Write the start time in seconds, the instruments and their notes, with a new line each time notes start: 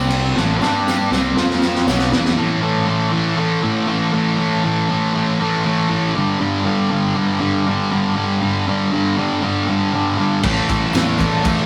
Already playing: picked electric bass C2, distorted electric guitar C3 G3 C4
0.00 tambourine
0.10 ride
0.26 tambourine
0.36 picked electric bass A1, distorted electric guitar A2 E3 A3, snare, tambourine
0.60 picked electric bass G2, distorted electric guitar G3 D4 G4, snare, tambourine
0.75 tambourine
0.87 snare, tambourine
1.11 picked electric bass C2, distorted electric guitar C3 G3 C4, snare, tambourine
1.37 picked electric bass F2, distorted electric guitar F3 C4 F4, snare, tambourine
1.49 snare, tambourine
1.62 snare, tambourine
1.75 snare, tambourine
1.87 picked electric bass B1, distorted electric guitar B2 F#3 B3, snare, tambourine
1.99 snare
2.11 picked electric bass E2, distorted electric guitar E3 B3 E4, snare, tambourine
2.25 snare, tambourine
2.37 distorted electric guitar A2 E3 A3
2.62 distorted electric guitar A2 E3 A3
2.87 distorted electric guitar A2 E3 A3
3.11 distorted electric guitar A2 E3 A3
3.36 distorted electric guitar A2 E3 A3
3.63 distorted electric guitar A2 E3 A3
3.87 distorted electric guitar A2 E3 A3
4.13 distorted electric guitar A2 E3 A3
4.37 distorted electric guitar A2 E3 A3
4.64 distorted electric guitar A2 E3 A3
4.90 distorted electric guitar A2 E3 A3
5.14 distorted electric guitar A2 E3 A3
5.40 distorted electric guitar A2 E3 A3
5.64 distorted electric guitar A2 E3 A3
5.89 distorted electric guitar A2 E3 A3
6.14 distorted electric guitar G2 D3 G3
6.40 distorted electric guitar G2 D3 G3
6.65 distorted electric guitar G2 D3 G3
6.91 distorted electric guitar G2 D3 G3
7.16 distorted electric guitar G2 D3 G3
7.40 distorted electric guitar G2 D3 G3
7.67 distorted electric guitar G2 D3 G3
7.91 distorted electric guitar G2 D3 G3
8.15 distorted electric guitar G2 D3 G3
8.42 distorted electric guitar G2 D3 G3
8.67 distorted electric guitar G2 D3 G3
8.91 distorted electric guitar G2 D3 G3
9.17 distorted electric guitar G2 D3 G3
9.42 distorted electric guitar G2 D3 G3
9.67 distorted electric guitar G2 D3 G3
9.93 distorted electric guitar G2 D3 G3
10.18 distorted electric guitar G2 D3 G3
10.43 picked electric bass A1, distorted electric guitar A2 E3 A3, kick, tambourine, crash
10.68 picked electric bass A1, distorted electric guitar A2 E3 A3, kick, ride, tambourine
10.93 picked electric bass E2, distorted electric guitar A2 E3 A3, snare, ride, tambourine
11.18 distorted electric guitar A2 E3 A3, kick, ride, tambourine
11.44 picked electric bass F2, distorted electric guitar A2 E3 A3, kick, ride, tambourine